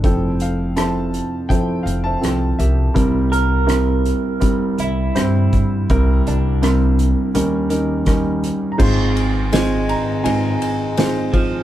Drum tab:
CC |--------|--------|--------|x-------|
RD |--------|--------|--------|-xxxxxxx|
HH |xxxxxxxx|xxxxxxxx|xxxxxxxx|--------|
SD |--r---r-|--r---r-|--r---r-|--o---o-|
BD |o---o---|o---o--o|o-----o-|o------o|